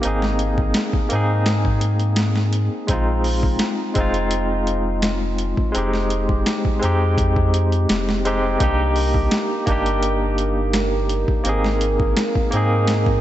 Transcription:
0.02 tine electric piano A#3 C4 D#4, closed hi-hat
0.06 sub bass G#1, tine electric piano G#4
0.22 snare
0.39 closed hi-hat
0.58 kick
0.74 snare, closed hi-hat
0.93 kick
1.09 sub bass G#2, tine electric piano A#3 C4 D#4, closed hi-hat
1.15 tine electric piano G#4
1.46 snare, closed hi-hat
1.65 kick
1.81 closed hi-hat
2.00 closed hi-hat
2.16 snare, closed hi-hat
2.36 snare
2.53 closed hi-hat
2.87 sub bass A#1, tine electric piano G#3 C4 D#4, kick, closed hi-hat
2.93 tine electric piano F4
3.24 open hi-hat
3.43 kick
3.59 snare, closed hi-hat
3.94 sub bass F1, tine electric piano G#3 C4, kick, closed hi-hat
3.98 tine electric piano D#4 F4
4.14 closed hi-hat
4.31 closed hi-hat
4.67 closed hi-hat
5.02 snare, closed hi-hat
5.38 closed hi-hat
5.57 kick
5.72 tine electric piano G#3 C4 D#4, closed hi-hat
5.76 sub bass F1, tine electric piano G4
5.94 snare
6.10 closed hi-hat
6.29 kick
6.46 snare, closed hi-hat
6.65 kick
6.79 sub bass F2, tine electric piano G#3 C4, closed hi-hat
6.84 tine electric piano D#4 G4
7.18 kick, closed hi-hat
7.36 kick
7.54 closed hi-hat
7.72 closed hi-hat
7.89 sub bass F1, snare, closed hi-hat
8.09 snare
8.25 tine electric piano G#3 C4 D#4 G4, closed hi-hat
8.58 sub bass C2, tine electric piano A#3 D4 D#4, analog synth pad A#4, kick, closed hi-hat
8.64 tine electric piano G4
8.96 open hi-hat
9.14 kick
9.31 snare, closed hi-hat
9.66 sub bass G1, tine electric piano A#3 D4 D#4, kick, closed hi-hat
9.72 tine electric piano G4
9.86 closed hi-hat
10.03 closed hi-hat
10.38 closed hi-hat
10.73 snare, closed hi-hat
11.09 closed hi-hat
11.28 kick
11.43 sub bass G#1, tine electric piano A#3 C4 D#4, closed hi-hat
11.49 tine electric piano G#4
11.64 snare
11.81 closed hi-hat
12.00 kick
12.17 snare, closed hi-hat
12.35 kick
12.51 sub bass G#2, tine electric piano A#3 C4, closed hi-hat
12.55 tine electric piano D#4 G#4
12.87 snare, closed hi-hat
13.06 kick

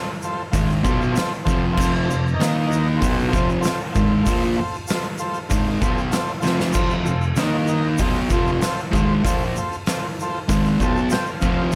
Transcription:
Already playing: transistor combo organ F4 A4 C5
0.22 transistor combo organ F4 A4 C5, shaker
0.52 distorted electric guitar G#2 D#3 G#3, transistor combo organ F4 A4 C5, kick, open hi-hat, shaker
0.70 shaker
0.83 distorted electric guitar B2 F#3 B3, transistor combo organ F4 A4 C5, kick, shaker
1.02 shaker
1.11 transistor combo organ F4 A4 C5
1.15 muted distorted electric guitar stroke, snare, open hi-hat, shaker
1.33 shaker
1.45 distorted electric guitar F2 C3 F3, transistor combo organ F4 A4 C5, kick, shaker
1.73 transistor combo organ F4 A4 C5
1.77 distorted electric guitar F2 C3 F3, kick, crash, shaker
1.95 shaker
2.03 transistor combo organ F4 A4 C5
2.09 distorted electric guitar F2 C3, shaker
2.27 shaker
2.34 transistor combo organ D#4 A#4 D#5
2.40 distorted electric guitar D#3 A#3 D#4, snare, open hi-hat, shaker
2.66 transistor combo organ D#4 A#4 D#5
2.72 shaker
2.97 transistor combo organ F4 A4 C5
3.01 distorted electric guitar B2 F#3 B3, kick, open hi-hat, shaker
3.19 shaker
3.27 transistor combo organ F4 A4 C5
3.33 distorted electric guitar F2 C3 F3, kick, shaker
3.50 shaker
3.61 transistor combo organ F4 A4 C5, open hi-hat, shaker
3.65 muted distorted electric guitar stroke, snare
3.80 shaker
3.92 distorted electric guitar G#2, transistor combo organ F4 A4 C5, kick, shaker
3.96 distorted electric guitar D#3 G#3
4.21 transistor combo organ F4 A4 C5
4.26 distorted electric guitar A#2 F3 A#3, kick, open hi-hat, shaker
4.42 shaker
4.56 transistor combo organ F4 A4 C5
4.74 shaker
4.87 transistor combo organ F4 A4 C5, snare, open hi-hat, shaker
5.03 shaker
5.18 transistor combo organ F4 A4 C5, shaker
5.34 shaker
5.49 distorted electric guitar G#2 D#3 G#3, transistor combo organ F4 A4 C5, kick, open hi-hat, shaker
5.66 shaker
5.81 distorted electric guitar B2 F#3 B3, transistor combo organ F4 A4 C5, kick, shaker
5.98 shaker
6.11 transistor combo organ F4 A4 C5, muted distorted electric guitar stroke, snare, open hi-hat, shaker
6.27 shaker
6.40 distorted electric guitar F2 C3, transistor combo organ F4 A4 C5, shaker
6.45 distorted electric guitar F3, snare
6.59 snare, shaker
6.72 distorted electric guitar F2 C3 F3, transistor combo organ F4 A4 C5, kick, crash, shaker
6.90 shaker
7.05 distorted electric guitar F2 C3, transistor combo organ F4 A4 C5, shaker
7.21 shaker
7.36 distorted electric guitar D#3 A#3 D#4, transistor combo organ D#4 A#4 D#5, snare, open hi-hat, shaker
7.67 transistor combo organ D#4 A#4 D#5, shaker
7.98 distorted electric guitar B2 F#3 B3, transistor combo organ F4 A4, kick, open hi-hat, shaker
8.02 transistor combo organ C5
8.14 shaker
8.30 distorted electric guitar F2 C3 F3, transistor combo organ F4 A4 C5, kick, shaker
8.47 shaker
8.61 transistor combo organ F4 A4 C5, muted distorted electric guitar stroke, snare, open hi-hat, shaker
8.78 shaker
8.91 distorted electric guitar G#2 D#3 G#3, transistor combo organ F4, kick, shaker
8.96 transistor combo organ A4 C5
9.23 distorted electric guitar A#2 F3 A#3, transistor combo organ F4 A4 C5, kick, open hi-hat, shaker
9.41 shaker
9.56 transistor combo organ F4 A4 C5, shaker
9.72 shaker
9.86 transistor combo organ F4 A4, snare, open hi-hat, shaker
9.90 transistor combo organ C5
10.20 transistor combo organ F4 A4 C5, shaker
10.48 distorted electric guitar G#2 D#3 G#3, transistor combo organ F4 A4 C5, kick, open hi-hat, shaker
10.65 shaker
10.79 distorted electric guitar B2 F#3 B3, transistor combo organ F4 A4 C5, kick, shaker
10.84 transistor combo organ A5
10.96 shaker
11.10 transistor combo organ F4 A4 C5 G5, muted distorted electric guitar stroke, snare, open hi-hat, shaker
11.26 shaker
11.31 transistor combo organ F5
11.41 distorted electric guitar F2 C3 F3, kick, shaker
11.45 transistor combo organ F4 A4 C5

